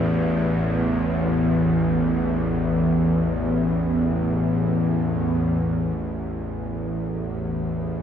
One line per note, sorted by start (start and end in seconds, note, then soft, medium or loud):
0.00 5.94 A1 medium
0.00 5.95 E2 medium
0.00 5.97 A2 medium
0.00 5.98 E3 medium
0.00 8.02 B3 medium
0.00 5.97 A4 medium
5.95 8.02 A1 medium
5.95 8.02 E2 medium
5.95 8.02 A2 medium
6.01 8.02 B4 medium
7.06 8.02 E3 medium